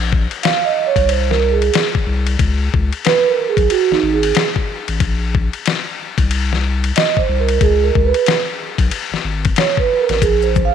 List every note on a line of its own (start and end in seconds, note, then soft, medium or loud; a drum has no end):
0.00 0.27 A#1 loud
0.13 kick medium
0.31 ride medium
0.43 0.66 F5 medium
0.43 snare loud
0.43 hi-hat pedal medium
0.43 ride medium
0.65 0.85 D#5 loud
0.87 1.07 C#5 medium
0.96 1.70 C2 medium
0.96 kick medium
0.96 ride medium
1.08 1.31 C5 medium
1.08 ride medium
1.30 1.53 A#4 medium
1.30 snare soft
1.52 1.82 G#4 medium
1.62 ride medium
1.74 snare loud
1.74 hi-hat pedal medium
1.74 ride medium
1.95 kick medium
2.06 2.36 C2 loud
2.27 ride medium
2.39 2.69 C#2 medium
2.39 kick loud
2.39 ride medium
2.74 2.91 C#2 medium
2.74 kick loud
2.93 ride medium
3.05 3.28 B4 loud
3.05 snare loud
3.05 hi-hat pedal medium
3.05 ride medium
3.28 3.50 A#4 medium
3.49 3.71 G#4 medium
3.57 3.68 B1 medium
3.57 kick medium
3.57 ride medium
3.70 3.93 F#4 medium
3.70 ride medium
3.90 3.95 G#1 medium
3.90 4.14 D#4 medium
3.90 snare soft
4.03 4.32 G#1 medium
4.14 4.44 G#4 medium
4.23 ride medium
4.35 snare loud
4.35 hi-hat pedal medium
4.35 ride medium
4.56 kick medium
4.88 4.99 A1 medium
4.88 ride medium
5.00 5.49 A#1 medium
5.00 kick loud
5.00 ride medium
5.35 kick medium
5.53 ride medium
5.66 snare medium
5.66 hi-hat pedal medium
5.66 ride medium
6.18 6.92 C2 medium
6.18 kick medium
6.18 ride medium
6.31 ride medium
6.53 snare soft
6.84 ride medium
6.96 7.19 D#5 loud
6.96 snare loud
6.96 hi-hat pedal medium
6.96 ride medium
7.17 7.41 C5 loud
7.17 kick medium
7.29 7.58 C2 loud
7.40 7.62 A#4 medium
7.49 ride medium
7.61 7.91 C#2 loud
7.61 7.84 G#4 medium
7.61 kick loud
7.61 ride medium
7.84 8.06 A#4 medium
7.95 8.13 C#2 loud
7.95 kick medium
8.05 8.35 B4 medium
8.14 ride medium
8.26 snare loud
8.26 hi-hat pedal medium
8.26 ride medium
8.78 8.90 B1 medium
8.78 kick medium
8.78 ride medium
8.91 ride medium
9.11 9.16 G#1 soft
9.11 snare soft
9.24 9.54 G#1 medium
9.45 kick medium
9.45 ride medium
9.56 9.67 C#5 medium
9.56 snare loud
9.56 hi-hat pedal medium
9.56 ride medium
9.77 10.01 B4 medium
9.77 kick medium
10.01 10.23 A#4 medium
10.09 10.21 A1 medium
10.09 snare soft
10.09 ride medium
10.22 10.71 A#1 loud
10.22 10.45 G#4 medium
10.22 kick loud
10.22 ride medium
10.22 maracas medium
10.42 10.66 C5 medium
10.42 maracas soft
10.56 kick medium
10.56 high conga soft
10.56 maracas soft
10.65 10.75 F5 loud